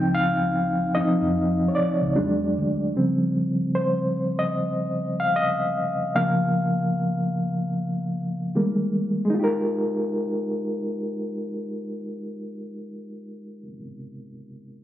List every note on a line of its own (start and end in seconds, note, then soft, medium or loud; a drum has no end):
0.00 0.93 C#2 medium
0.00 0.94 F3 soft
0.00 0.94 C4 soft
0.00 0.95 D#4 medium
0.00 0.11 G5 medium
0.15 0.97 F5 loud
0.95 1.31 F3 soft
0.95 1.31 C4 soft
0.95 1.32 D#4 soft
0.95 1.71 D#5 medium
0.95 muted fingered electric bass stroke soft
1.22 1.67 F2 medium
1.68 1.75 C#5 medium
1.75 2.51 D5 medium
1.75 muted fingered electric bass stroke soft
2.02 2.14 C#2 medium
2.15 2.50 E2 medium
2.15 2.71 F#3 medium
2.15 2.71 G#3 soft
2.15 2.72 D4 medium
2.59 2.90 D2 medium
2.96 3.52 C#3 soft
2.96 3.52 F3 soft
2.96 3.52 G3 soft
2.96 3.52 C4 medium
3.75 4.41 C5 medium
4.39 5.21 D#5 medium
5.20 5.35 F5 medium
5.36 6.18 D#5 medium
6.15 7.31 C#3 soft
6.15 7.31 F3 soft
6.15 7.32 A#3 soft
6.15 8.51 F5 medium
8.55 9.11 D#3 soft
8.55 9.11 G3 soft
8.55 9.11 G#3 soft
8.55 9.12 A#3 soft
9.25 13.62 G#3 medium
9.30 13.67 D#4 medium
9.34 13.71 F4 medium
9.39 13.76 G4 medium
9.44 13.81 A#4 medium